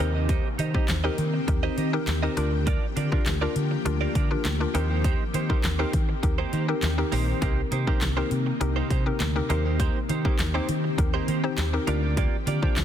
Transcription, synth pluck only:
0.00 0.59 C4 loud
0.00 0.59 D#4 medium
0.00 0.59 G4 medium
0.00 0.59 A#4 loud
0.74 0.95 C4 medium
0.74 0.95 D#4 medium
0.74 0.95 G4 medium
0.74 0.95 C5 medium
1.04 1.35 C4 medium
1.04 1.35 D#4 medium
1.04 1.35 G4 medium
1.04 1.35 A#4 loud
1.48 1.79 C4 medium
1.48 1.79 D#4 medium
1.48 1.79 G4 medium
1.48 1.79 A#4 medium
1.93 2.13 C4 medium
1.93 2.13 D#4 medium
1.93 2.14 G4 medium
1.93 2.14 A#4 loud
2.23 2.37 C4 medium
2.23 2.37 D#4 medium
2.23 2.36 G4 medium
2.23 2.36 A#4 medium
2.37 2.96 D4 medium
2.37 2.96 F4 medium
2.37 2.96 G4 medium
2.37 2.97 A#4 loud
3.12 3.32 D4 medium
3.12 3.32 F4 medium
3.12 3.32 G4 medium
3.12 3.32 A#4 medium
3.42 3.73 D4 medium
3.42 3.73 F4 medium
3.42 3.73 G4 medium
3.42 3.73 A#4 loud
3.85 4.16 D4 medium
3.85 4.17 F4 medium
3.85 4.17 G4 medium
3.85 4.17 A#4 medium
4.31 4.51 D4 medium
4.31 4.51 F4 medium
4.31 4.51 G4 medium
4.31 4.51 A#4 loud
4.60 4.74 D4 medium
4.60 4.75 F4 medium
4.60 4.74 G4 medium
4.60 4.74 A#4 medium
4.74 5.34 C4 medium
4.74 5.34 D#4 medium
4.74 5.34 G4 medium
4.74 5.34 A#4 loud
5.50 5.70 C4 medium
5.50 5.70 D#4 medium
5.50 5.70 G4 medium
5.50 5.70 A#4 medium
5.79 6.10 C4 medium
5.79 6.10 D#4 medium
5.79 6.10 G4 medium
5.79 6.10 A#4 loud
6.23 6.54 C4 medium
6.23 6.54 D#4 medium
6.23 6.54 G4 medium
6.23 6.54 A#4 medium
6.68 6.89 C4 medium
6.68 6.89 D#4 medium
6.68 6.89 G4 medium
6.68 6.89 A#4 loud
6.98 7.29 C4 medium
6.98 7.29 D#4 medium
6.98 7.29 G4 medium
6.98 7.29 A#4 loud
7.42 7.73 C4 medium
7.42 7.73 D#4 medium
7.42 7.73 G4 medium
7.42 7.73 A#4 loud
7.87 8.07 C4 medium
7.87 8.07 D#4 medium
7.87 8.08 G4 medium
7.87 8.08 A#4 loud
8.17 8.48 C4 medium
8.17 8.48 D#4 medium
8.17 8.48 G4 medium
8.17 8.48 A#4 loud
8.61 8.92 C4 medium
8.61 8.92 D#4 medium
8.61 8.92 G4 medium
8.61 8.92 A#4 loud
9.06 9.26 C4 medium
9.06 9.26 D#4 medium
9.06 9.26 G4 medium
9.06 9.26 A#4 loud
9.36 9.48 C4 medium
9.36 9.49 D#4 medium
9.36 9.49 G4 medium
9.36 9.49 A#4 loud
9.50 10.09 C4 medium
9.50 10.09 D#4 medium
9.50 10.09 G4 medium
9.50 10.09 A#4 loud
10.25 10.45 C4 medium
10.25 10.45 D#4 medium
10.25 10.45 G4 medium
10.25 10.45 A#4 loud
10.54 10.85 C4 medium
10.54 10.86 D#4 medium
10.54 10.86 G4 medium
10.54 10.86 C5 loud
10.98 11.29 C4 medium
10.98 11.29 D#4 medium
10.98 11.29 G4 medium
10.98 11.29 A#4 loud
11.44 11.64 C4 medium
11.44 11.64 D#4 medium
11.44 11.64 G4 medium
11.44 11.64 C5 loud
11.73 11.87 C4 medium
11.73 11.87 D#4 medium
11.73 11.86 G4 medium
11.73 11.87 A#4 loud
11.87 12.47 D4 medium
11.87 12.47 F4 medium
11.87 12.47 G4 medium
11.87 12.47 A#4 loud
12.62 12.83 D4 medium
12.62 12.83 F4 medium
12.62 12.83 G4 medium
12.62 12.83 C5 loud

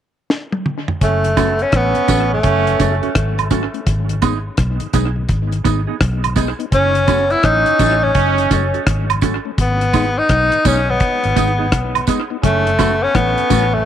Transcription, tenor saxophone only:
1.03 1.64 A3 medium
1.62 1.77 C#4 medium
1.76 2.33 B3 loud
2.34 3.00 A3 medium
6.74 7.33 C#4 loud
7.31 7.46 E4 medium
7.45 8.05 D#4 loud
8.03 8.74 C#4 medium
9.61 10.20 B3 medium
10.18 10.68 D#4 loud
10.67 10.91 C#4 loud
10.90 12.09 B3 medium
12.45 13.04 A3 medium
13.03 13.17 C#4 loud
13.15 13.75 B3 loud
13.74 13.85 A3 medium

